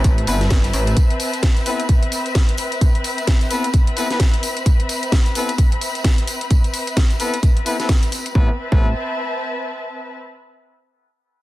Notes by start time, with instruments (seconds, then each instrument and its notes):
Already playing: string section C4 B4 E5 A5
0.04 wobble bass A1, kick, closed hi-hat, tambourine
0.18 closed hi-hat
0.27 wobble bass G1, horn section B3 C4 E4 A4 B4, closed hi-hat, open hi-hat, tambourine
0.41 snare, closed hi-hat, tambourine
0.50 kick, snare, closed hi-hat, tambourine
0.64 snare, closed hi-hat, tambourine
0.73 wobble bass A1, closed hi-hat, open hi-hat, tambourine
0.87 closed hi-hat, tambourine
0.97 kick, closed hi-hat, tambourine
1.10 closed hi-hat
1.20 open hi-hat, tambourine
1.33 closed hi-hat, tambourine
1.43 kick, snare, closed hi-hat, tambourine
1.54 string section B5, closed hi-hat, tambourine
1.66 horn section B3 C4 E4 A4 B4, open hi-hat, tambourine
1.80 closed hi-hat, tambourine
1.89 kick, closed hi-hat, tambourine
2.03 closed hi-hat
2.12 open hi-hat, tambourine
2.26 closed hi-hat, tambourine
2.35 kick, snare, closed hi-hat
2.49 closed hi-hat
2.58 open hi-hat, tambourine
2.72 closed hi-hat, tambourine
2.81 kick, closed hi-hat, tambourine
2.95 closed hi-hat
3.04 open hi-hat, tambourine
3.18 closed hi-hat, tambourine
3.27 kick, snare, closed hi-hat, tambourine
3.41 closed hi-hat, tambourine
3.50 horn section B3 C4 E4 A4 B4, open hi-hat, tambourine
3.64 closed hi-hat, tambourine
3.73 kick, closed hi-hat, tambourine
3.87 closed hi-hat
3.97 horn section B3 C4 E4 A4 B4, open hi-hat, tambourine
4.10 horn section B3 C4 E4 A4 B4, snare, closed hi-hat, tambourine
4.20 kick, snare, closed hi-hat, tambourine
4.34 closed hi-hat
4.43 open hi-hat, tambourine
4.57 closed hi-hat, tambourine
4.66 kick, closed hi-hat, tambourine
4.80 closed hi-hat
4.89 open hi-hat, tambourine
5.03 closed hi-hat, tambourine
5.12 kick, snare, closed hi-hat, tambourine
5.26 closed hi-hat, tambourine
5.35 horn section B3 C4 E4 A4 B4, open hi-hat, tambourine
5.49 closed hi-hat, tambourine
5.58 kick, closed hi-hat, tambourine
5.72 closed hi-hat
5.81 open hi-hat, tambourine
5.95 closed hi-hat, tambourine
6.04 kick, snare, closed hi-hat, tambourine
6.18 closed hi-hat
6.27 open hi-hat, tambourine
6.41 closed hi-hat, tambourine
6.51 kick, closed hi-hat, tambourine
6.64 closed hi-hat, tambourine
6.74 open hi-hat, tambourine
6.87 closed hi-hat, tambourine
6.97 kick, snare, closed hi-hat, tambourine
7.10 closed hi-hat, tambourine
7.20 horn section B3 C4 E4 A4 B4, open hi-hat, tambourine
7.34 closed hi-hat
7.43 kick, closed hi-hat, tambourine
7.57 closed hi-hat
7.66 horn section B3 C4 E4 A4 B4, open hi-hat, tambourine
7.80 horn section B3 C4 E4 A4 B4, snare, closed hi-hat, tambourine
7.89 kick, snare, closed hi-hat, tambourine
8.03 closed hi-hat, tambourine
8.12 open hi-hat, tambourine
8.26 closed hi-hat, tambourine
8.35 wobble bass A1, horn section B3 C4 E4 A4 B4, string section C4, kick
8.44 string section B4
8.51 string section E5
8.56 string section A5
8.72 wobble bass A1, horn section B3 C4 E4 A4 B4, kick